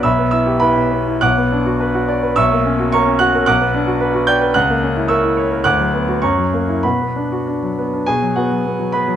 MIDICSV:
0, 0, Header, 1, 2, 480
1, 0, Start_track
1, 0, Key_signature, 2, "minor"
1, 0, Tempo, 580833
1, 32, Time_signature, 2, 2, 24, 8
1, 1954, Tempo, 546448
1, 4834, Tempo, 580271
1, 5314, Tempo, 615385
1, 6754, Tempo, 572519
1, 7670, End_track
2, 0, Start_track
2, 0, Title_t, "Grand piano"
2, 0, Program_c, 0, 0
2, 0, Control_c, 0, 64, 127
2, 25, Note_on_c, 0, 88, 84
2, 34, Note_on_c, 0, 83, 62
2, 35, Note_on_c, 0, 35, 71
2, 35, Note_on_c, 0, 76, 66
2, 45, Control_c, 0, 64, 0
2, 151, Note_on_c, 0, 59, 60
2, 189, Control_c, 0, 64, 127
2, 244, Note_off_c, 0, 88, 0
2, 249, Note_off_c, 0, 83, 0
2, 250, Note_off_c, 0, 76, 0
2, 257, Note_on_c, 0, 88, 82
2, 266, Note_on_c, 0, 64, 57
2, 268, Note_on_c, 0, 76, 65
2, 336, Note_off_c, 0, 59, 0
2, 383, Note_on_c, 0, 67, 59
2, 454, Note_off_c, 0, 64, 0
2, 487, Note_off_c, 0, 76, 0
2, 493, Note_on_c, 0, 83, 85
2, 497, Note_off_c, 0, 88, 0
2, 503, Note_on_c, 0, 71, 63
2, 503, Note_on_c, 0, 79, 60
2, 504, Note_on_c, 0, 64, 59
2, 575, Note_off_c, 0, 67, 0
2, 627, Note_on_c, 0, 47, 52
2, 702, Note_off_c, 0, 64, 0
2, 753, Note_on_c, 0, 59, 60
2, 832, Note_off_c, 0, 47, 0
2, 885, Note_on_c, 0, 64, 54
2, 959, Note_off_c, 0, 59, 0
2, 978, Note_off_c, 0, 71, 0
2, 978, Note_off_c, 0, 79, 0
2, 982, Note_off_c, 0, 35, 0
2, 1000, Note_on_c, 0, 90, 93
2, 1006, Note_off_c, 0, 83, 0
2, 1010, Note_on_c, 0, 35, 74
2, 1011, Note_on_c, 0, 86, 68
2, 1012, Note_off_c, 0, 64, 0
2, 1012, Note_on_c, 0, 78, 73
2, 1028, Control_c, 0, 64, 0
2, 1135, Note_on_c, 0, 59, 60
2, 1167, Control_c, 0, 64, 127
2, 1256, Note_on_c, 0, 62, 61
2, 1326, Note_off_c, 0, 59, 0
2, 1372, Note_on_c, 0, 66, 57
2, 1443, Note_off_c, 0, 62, 0
2, 1491, Note_on_c, 0, 71, 64
2, 1558, Note_off_c, 0, 66, 0
2, 1608, Note_on_c, 0, 66, 60
2, 1675, Note_off_c, 0, 71, 0
2, 1722, Note_on_c, 0, 74, 66
2, 1792, Note_off_c, 0, 66, 0
2, 1844, Note_on_c, 0, 71, 60
2, 1908, Note_off_c, 0, 74, 0
2, 1921, Note_off_c, 0, 86, 0
2, 1922, Note_off_c, 0, 78, 0
2, 1925, Note_off_c, 0, 35, 0
2, 1949, Note_off_c, 0, 90, 0
2, 1949, Note_on_c, 0, 88, 98
2, 1957, Note_off_c, 0, 71, 0
2, 1959, Note_on_c, 0, 35, 79
2, 1959, Note_on_c, 0, 76, 71
2, 1960, Note_on_c, 0, 85, 71
2, 1972, Control_c, 0, 64, 0
2, 2087, Note_on_c, 0, 58, 60
2, 2106, Control_c, 0, 64, 127
2, 2207, Note_on_c, 0, 61, 61
2, 2279, Note_off_c, 0, 58, 0
2, 2332, Note_on_c, 0, 66, 59
2, 2399, Note_off_c, 0, 61, 0
2, 2413, Note_off_c, 0, 76, 0
2, 2414, Note_off_c, 0, 85, 0
2, 2442, Note_off_c, 0, 88, 0
2, 2445, Note_on_c, 0, 85, 92
2, 2455, Note_on_c, 0, 70, 65
2, 2455, Note_on_c, 0, 73, 65
2, 2456, Note_on_c, 0, 82, 68
2, 2521, Note_off_c, 0, 66, 0
2, 2568, Note_on_c, 0, 61, 57
2, 2641, Note_off_c, 0, 70, 0
2, 2672, Note_off_c, 0, 73, 0
2, 2673, Note_off_c, 0, 82, 0
2, 2678, Note_on_c, 0, 90, 93
2, 2684, Note_off_c, 0, 85, 0
2, 2689, Note_on_c, 0, 66, 64
2, 2689, Note_on_c, 0, 78, 69
2, 2756, Note_off_c, 0, 61, 0
2, 2813, Note_on_c, 0, 70, 63
2, 2876, Note_off_c, 0, 66, 0
2, 2894, Note_off_c, 0, 35, 0
2, 2905, Note_off_c, 0, 90, 0
2, 2906, Note_off_c, 0, 78, 0
2, 2919, Note_on_c, 0, 90, 97
2, 2926, Note_off_c, 0, 70, 0
2, 2928, Note_on_c, 0, 86, 74
2, 2929, Note_on_c, 0, 78, 77
2, 2930, Note_on_c, 0, 35, 78
2, 2936, Control_c, 0, 64, 0
2, 3048, Note_on_c, 0, 59, 64
2, 3078, Control_c, 0, 64, 127
2, 3166, Note_on_c, 0, 62, 68
2, 3233, Note_off_c, 0, 59, 0
2, 3278, Note_on_c, 0, 66, 61
2, 3352, Note_off_c, 0, 62, 0
2, 3397, Note_on_c, 0, 71, 68
2, 3467, Note_off_c, 0, 66, 0
2, 3515, Note_on_c, 0, 66, 65
2, 3586, Note_off_c, 0, 71, 0
2, 3602, Note_off_c, 0, 78, 0
2, 3602, Note_off_c, 0, 86, 0
2, 3628, Note_on_c, 0, 91, 96
2, 3632, Note_off_c, 0, 90, 0
2, 3637, Note_on_c, 0, 79, 75
2, 3640, Note_on_c, 0, 74, 68
2, 3705, Note_off_c, 0, 66, 0
2, 3751, Note_on_c, 0, 71, 63
2, 3827, Note_off_c, 0, 74, 0
2, 3848, Note_off_c, 0, 35, 0
2, 3857, Note_off_c, 0, 79, 0
2, 3867, Note_on_c, 0, 90, 94
2, 3869, Note_off_c, 0, 91, 0
2, 3871, Note_off_c, 0, 71, 0
2, 3876, Note_on_c, 0, 37, 78
2, 3876, Note_on_c, 0, 78, 71
2, 3889, Control_c, 0, 64, 0
2, 4000, Note_on_c, 0, 58, 64
2, 4018, Control_c, 0, 64, 127
2, 4116, Note_on_c, 0, 61, 61
2, 4186, Note_off_c, 0, 58, 0
2, 4235, Note_on_c, 0, 64, 60
2, 4303, Note_off_c, 0, 61, 0
2, 4317, Note_off_c, 0, 78, 0
2, 4342, Note_on_c, 0, 88, 80
2, 4346, Note_off_c, 0, 90, 0
2, 4351, Note_on_c, 0, 85, 61
2, 4352, Note_on_c, 0, 70, 67
2, 4352, Note_on_c, 0, 76, 64
2, 4422, Note_off_c, 0, 64, 0
2, 4476, Note_on_c, 0, 64, 61
2, 4541, Note_off_c, 0, 70, 0
2, 4572, Note_off_c, 0, 85, 0
2, 4573, Note_off_c, 0, 76, 0
2, 4585, Note_off_c, 0, 88, 0
2, 4593, Note_on_c, 0, 73, 62
2, 4665, Note_off_c, 0, 64, 0
2, 4717, Note_on_c, 0, 70, 62
2, 4787, Note_off_c, 0, 73, 0
2, 4807, Note_off_c, 0, 37, 0
2, 4832, Note_on_c, 0, 90, 95
2, 4837, Note_off_c, 0, 70, 0
2, 4840, Note_on_c, 0, 78, 70
2, 4843, Note_on_c, 0, 38, 76
2, 4843, Note_on_c, 0, 86, 72
2, 4846, Control_c, 0, 64, 0
2, 4958, Note_on_c, 0, 54, 57
2, 5004, Control_c, 0, 64, 127
2, 5077, Note_on_c, 0, 59, 57
2, 5147, Note_off_c, 0, 54, 0
2, 5197, Note_on_c, 0, 66, 54
2, 5268, Note_off_c, 0, 59, 0
2, 5284, Note_off_c, 0, 78, 0
2, 5285, Note_off_c, 0, 86, 0
2, 5304, Note_off_c, 0, 38, 0
2, 5309, Note_on_c, 0, 85, 79
2, 5313, Note_off_c, 0, 90, 0
2, 5316, Note_off_c, 0, 66, 0
2, 5316, Note_on_c, 0, 82, 56
2, 5318, Note_on_c, 0, 42, 70
2, 5318, Note_on_c, 0, 73, 60
2, 5326, Control_c, 0, 64, 0
2, 5435, Note_on_c, 0, 54, 51
2, 5455, Control_c, 0, 64, 127
2, 5555, Note_on_c, 0, 58, 54
2, 5622, Note_off_c, 0, 54, 0
2, 5673, Note_on_c, 0, 64, 53
2, 5744, Note_off_c, 0, 58, 0
2, 5760, Note_off_c, 0, 82, 0
2, 5761, Note_off_c, 0, 73, 0
2, 5778, Note_off_c, 0, 42, 0
2, 5787, Note_on_c, 0, 83, 69
2, 5788, Note_off_c, 0, 85, 0
2, 5793, Note_off_c, 0, 64, 0
2, 5799, Note_on_c, 0, 78, 50
2, 5800, Note_on_c, 0, 47, 61
2, 5800, Note_on_c, 0, 71, 50
2, 5804, Control_c, 0, 64, 0
2, 5927, Note_on_c, 0, 59, 48
2, 5960, Control_c, 0, 64, 127
2, 6047, Note_on_c, 0, 62, 52
2, 6116, Note_off_c, 0, 59, 0
2, 6171, Note_on_c, 0, 66, 51
2, 6236, Note_off_c, 0, 62, 0
2, 6288, Note_on_c, 0, 62, 52
2, 6358, Note_off_c, 0, 66, 0
2, 6409, Note_on_c, 0, 54, 43
2, 6477, Note_off_c, 0, 62, 0
2, 6494, Note_off_c, 0, 78, 0
2, 6495, Note_off_c, 0, 71, 0
2, 6520, Note_off_c, 0, 83, 0
2, 6532, Note_on_c, 0, 59, 48
2, 6597, Note_off_c, 0, 54, 0
2, 6649, Note_on_c, 0, 62, 47
2, 6714, Note_off_c, 0, 59, 0
2, 6730, Note_off_c, 0, 47, 0
2, 6750, Note_on_c, 0, 80, 85
2, 6759, Note_off_c, 0, 62, 0
2, 6761, Note_on_c, 0, 47, 68
2, 6761, Note_on_c, 0, 68, 66
2, 6768, Control_c, 0, 64, 0
2, 6882, Note_on_c, 0, 54, 56
2, 6931, Control_c, 0, 64, 127
2, 6981, Note_off_c, 0, 68, 0
2, 6992, Note_off_c, 0, 80, 0
2, 6995, Note_on_c, 0, 78, 69
2, 7002, Note_on_c, 0, 66, 51
2, 7003, Note_on_c, 0, 59, 57
2, 7070, Note_off_c, 0, 54, 0
2, 7127, Note_on_c, 0, 54, 51
2, 7190, Note_off_c, 0, 59, 0
2, 7247, Note_on_c, 0, 59, 56
2, 7313, Note_off_c, 0, 54, 0
2, 7364, Note_on_c, 0, 54, 50
2, 7432, Note_off_c, 0, 59, 0
2, 7445, Note_off_c, 0, 66, 0
2, 7471, Note_on_c, 0, 83, 79
2, 7475, Note_off_c, 0, 78, 0
2, 7479, Note_on_c, 0, 71, 61
2, 7480, Note_on_c, 0, 59, 57
2, 7551, Note_off_c, 0, 54, 0
2, 7600, Note_on_c, 0, 54, 57
2, 7669, Note_off_c, 0, 59, 0
2, 7670, Note_off_c, 0, 47, 0
2, 7670, Note_off_c, 0, 54, 0
2, 7670, Note_off_c, 0, 71, 0
2, 7670, Note_off_c, 0, 83, 0
2, 7670, End_track
0, 0, End_of_file